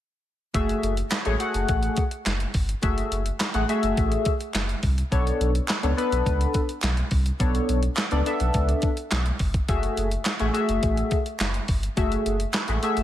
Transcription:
0.54 sub bass F#1, analog polysynth A3 F#4 G#4 E5, kick, closed hi-hat
0.69 closed hi-hat
0.83 sub bass F#1, closed hi-hat
0.97 closed hi-hat
1.11 snare, clap, closed hi-hat
1.25 sub bass A1, analog polysynth A3 F#4 G#4 C#5, closed hi-hat
1.39 analog polysynth A3 F#4 G#4 F#5, closed hi-hat
1.54 sub bass F#1, closed hi-hat
1.69 sub bass A1, kick, closed hi-hat
1.83 closed hi-hat
1.97 kick, closed hi-hat
2.11 closed hi-hat
2.26 sub bass F#1, snare, clap, closed hi-hat
2.40 closed hi-hat
2.54 sub bass G1, kick, open hi-hat
2.69 closed hi-hat
2.82 sub bass F#1, analog polysynth A3 F#4 G#4 E5, kick, closed hi-hat
2.98 closed hi-hat
3.12 sub bass F#1, closed hi-hat
3.26 closed hi-hat
3.40 snare, clap, closed hi-hat
3.54 sub bass A1, analog polysynth A3 F#4 G#4 F#5, closed hi-hat
3.69 analog polysynth A3 F#4 G#4 E5, closed hi-hat
3.83 sub bass F#1, closed hi-hat
3.97 sub bass A1, kick, closed hi-hat
4.12 closed hi-hat
4.25 kick, closed hi-hat
4.41 closed hi-hat
4.54 sub bass F#1, snare, clap, closed hi-hat
4.69 closed hi-hat
4.83 sub bass C2, kick, open hi-hat
4.98 closed hi-hat
5.11 sub bass B1, analog polysynth B3 D4 A4 C#5, kick, closed hi-hat
5.27 closed hi-hat
5.40 sub bass B1, closed hi-hat
5.55 closed hi-hat
5.68 snare, clap, closed hi-hat
5.83 sub bass C#2, analog polysynth B3 D4 A4 C#5, closed hi-hat
5.97 analog polysynth B3 D4 A4 B4, closed hi-hat
6.12 sub bass B1, closed hi-hat
6.26 sub bass C#2, kick, closed hi-hat
6.41 closed hi-hat
6.54 kick, closed hi-hat
6.69 closed hi-hat
6.82 sub bass B1, snare, clap, closed hi-hat
6.97 closed hi-hat
7.11 sub bass C2, kick, open hi-hat
7.26 closed hi-hat
7.40 sub bass B1, analog polysynth B3 D4 A4 C#5, kick, closed hi-hat
7.55 closed hi-hat
7.69 sub bass B1, closed hi-hat
7.83 closed hi-hat
7.97 snare, clap, closed hi-hat
8.11 sub bass C#2, analog polysynth B3 D4 A4 D5, closed hi-hat
8.26 analog polysynth B3 D4 A4 E5, closed hi-hat
8.40 sub bass B1, closed hi-hat
8.54 sub bass C#2, kick, closed hi-hat
8.69 closed hi-hat
8.82 kick, closed hi-hat
8.97 closed hi-hat
9.11 sub bass B1, snare, clap, closed hi-hat
9.26 closed hi-hat
9.39 sub bass G1, kick, open hi-hat
9.54 kick, closed hi-hat
9.68 sub bass F#1, analog polysynth A3 F#4 G#4 E5, kick, closed hi-hat
9.83 closed hi-hat
9.97 sub bass F#1, closed hi-hat
10.11 closed hi-hat
10.25 snare, clap, closed hi-hat
10.40 sub bass A1, analog polysynth A3 F#4 G#4 E5, closed hi-hat
10.53 analog polysynth A3 F#4 G#4 E5, closed hi-hat
10.69 sub bass F#1, closed hi-hat
10.83 sub bass A1, kick, closed hi-hat
10.97 closed hi-hat
11.11 kick, closed hi-hat
11.26 closed hi-hat
11.40 sub bass F#1, snare, clap, closed hi-hat
11.54 closed hi-hat
11.68 sub bass G1, kick, open hi-hat
11.83 closed hi-hat
11.97 sub bass F#1, analog polysynth A3 F#4 G#4 E5, kick, closed hi-hat
12.12 closed hi-hat
12.26 sub bass F#1, closed hi-hat
12.40 closed hi-hat
12.54 snare, clap, closed hi-hat
12.68 sub bass A1, analog polysynth A3 F#4 G#4 E5, closed hi-hat
12.83 analog polysynth A3 F#4 G#4 E5, closed hi-hat
12.97 sub bass F#1, closed hi-hat

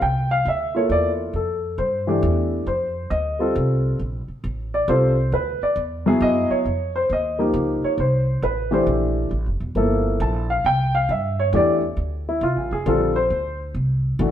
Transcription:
0.01 upright bass C2, grand piano G5
0.31 grand piano F5
0.45 upright bass D2, grand piano E5
0.75 grand piano A#3 E4 F4 A4 C#5
0.90 upright bass E2, grand piano D5
1.33 upright bass F2, grand piano A4
1.78 upright bass G2, grand piano C5
2.07 grand piano E3 A3 D4 G4
2.23 upright bass E2
2.67 upright bass F2, grand piano C5
3.10 upright bass D2, grand piano D#5
3.39 grand piano G3 C4 F4 A4
3.56 upright bass C2
3.99 upright bass A#1
4.28 muted upright bass stroke
4.44 upright bass A1
4.74 grand piano D5
4.88 upright bass C2, grand piano G3 C4 F4 A4 C5
5.32 upright bass D2, grand piano B4
5.61 grand piano D5, muted upright bass stroke
5.76 upright bass E2
6.06 grand piano F#3 B3 E4 G#4
6.20 upright bass F#2, grand piano D#5
6.50 grand piano C#5, muted upright bass stroke
6.65 upright bass F2
6.96 grand piano C5
7.10 upright bass D#2, grand piano D#5
7.39 grand piano F3 A#3 D#4 G4
7.54 upright bass C#2
7.83 grand piano C#5, muted upright bass stroke
7.98 upright bass C2, grand piano C5
8.42 upright bass A1, grand piano B4
8.71 grand piano E3 A3 D4 G4 C5
8.87 upright bass A#1
9.31 upright bass A1
9.46 upright bass F1
9.60 upright bass E1
9.75 upright bass G1, grand piano F3 A#3 E4 A4
10.20 upright bass A#1, grand piano A5
10.50 grand piano F5
10.64 upright bass C2, grand piano G5
10.95 grand piano F5
11.09 upright bass G2, grand piano E5
11.40 grand piano C#5
11.53 upright bass E2, grand piano E3 A3 D4 G4 D5
11.97 upright bass D2
12.29 grand piano E4
12.41 upright bass C2, grand piano F4
12.56 upright bass A1
12.71 upright bass F1, grand piano G#4
12.86 upright bass A#1, grand piano D3 G3 C4 F4 A4
13.16 grand piano C5
13.30 upright bass D2
13.74 upright bass C2
14.19 upright bass A1, grand piano E3 A3 D4 F#4

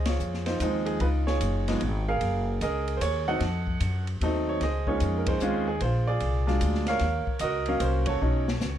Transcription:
Already playing: upright bass C#2, upright piano C5
0.05 upright piano F4 G#4 C#5, snare, ride
0.19 upright bass F2, hi-hat pedal
0.34 snare
0.46 upright piano D#4 F4 C5, snare, ride
0.60 upright bass D#2, upright piano F3 G#3 C4 D#4, kick, hi-hat pedal, ride
0.86 upright piano G#4, ride
1.00 upright bass C#2, upright piano D#4 F4 B4, kick, ride
1.27 upright piano F4 G#4 C#5, snare
1.40 upright bass F#1, kick, hi-hat pedal, ride
1.68 upright piano F3 G#3 B3 D#4, snare, ride
1.81 upright bass G#1, kick, ride
2.09 upright piano G#4 A#4 F5
2.21 upright bass F#1, kick, ride
2.61 upright bass C#2, upright piano G#4 A#4 D#5, kick, hi-hat pedal, ride
2.88 ride
2.97 upright bass D#2, upright piano C5
3.01 upright piano C#5, kick, hi-hat pedal, ride
3.27 upright piano F#3 A3 C4 D#4 A4 D#5 F#5
3.40 upright bass F2, kick, snare, ride
3.67 kick
3.80 upright bass F#2, kick, hi-hat pedal, ride
4.07 ride
4.21 upright bass D#2, upright piano F#3 A3 C4 D#4, kick, ride
4.49 upright piano C#5
4.60 upright bass C#2, upright piano G#4 C5 D#5, kick, snare, ride
4.87 upright piano G#3 A#3 C#4 D#4 F4 G#4 C#5, kick
5.00 upright bass F2, kick, hi-hat pedal, ride
5.18 upright piano A#4
5.26 upright piano D#4 G#4 C5, kick, ride
5.40 upright bass D#2, upright piano G#3 C4 C#4 F4, hi-hat pedal
5.68 upright piano G#4
5.80 upright bass A#1, upright piano F4 G#4 C5, kick, ride
6.07 upright piano F4 G#4 D5
6.20 upright bass C2, kick, ride
6.47 upright piano F#3 G#3 D4 F4, snare
6.61 upright bass D2, kick, hi-hat pedal, ride
6.75 snare
6.86 upright piano A#4 C#5 F5, snare, ride
6.99 upright bass D#2, kick, snare, ride
7.27 muted upright bass stroke, kick
7.39 upright bass C#2, upright piano F#4 A#4 D#5, kick, hi-hat pedal, ride
7.66 upright piano F#3 A#3 C#4 F5, ride
7.80 upright bass C2, upright piano C5, kick, hi-hat pedal, ride
8.06 upright piano F#4 A4 C#5, kick, ride
8.21 upright bass B1, upright piano F#3 A3 C#4 D#4
8.48 snare
8.60 upright bass C#2, snare, hi-hat pedal

